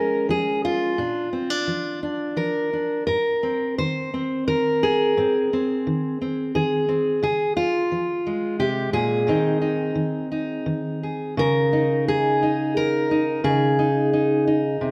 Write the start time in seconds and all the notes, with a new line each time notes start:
Already playing: F3 G#3 C#4 A#4
0.29 F3 G#4
0.65 F4
0.98 A#2 D4
1.33 C4
1.50 D4
1.67 F3
2.03 D4
2.36 F3 A#4
2.73 D4
3.07 G#2 A#4
3.43 C4
3.78 D#3 C5
4.14 C4
4.48 D#3 A#4
4.83 G#4
5.17 G#2 C4
5.53 C4
5.87 D#3
6.22 C4
6.55 D#3 G#4
6.89 C4
7.23 C#3 G#4
7.57 F4
7.92 F3
8.27 G#3
8.59 C3 G4
8.93 A#2 G#4
9.27 G#2 D#3 C4 D#4
9.61 D#4
9.95 D#3
10.32 D#4
10.66 D#3
11.03 G#4
11.37 C#3 A#4
11.73 D#4
12.08 G#4
12.43 D#4
12.77 A#4
13.11 D#4
13.44 C#3 G#4
13.79 D#4
14.13 D#4
14.47 D#4
14.81 C3